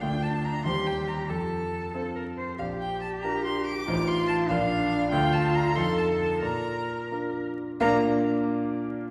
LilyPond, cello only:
\new Staff \with { instrumentName = "Cello" } { \time 6/8 \key bes \major \tempo 4. = 93 d'4. g'4. | a'4. a'8 bes'8 c''8 | g'2. | f'4. d'4. |
f'4. a'4. | bes'2~ bes'16 r8. | bes8 r2 r8 | }